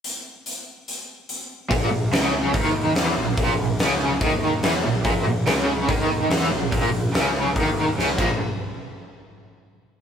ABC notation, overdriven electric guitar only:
X:1
M:4/4
L:1/8
Q:1/4=144
K:Bbm
V:1 name="Overdriven electric guitar" clef=bass
z8 | B,, B,, D,2 E,2 =E, B,, | B,, B,, D,2 E,2 =E, B,, | B,, B,, D,2 E,2 =E, B,, |
B,, B,, D,2 E,2 D, [B,,F,B,] | z8 |]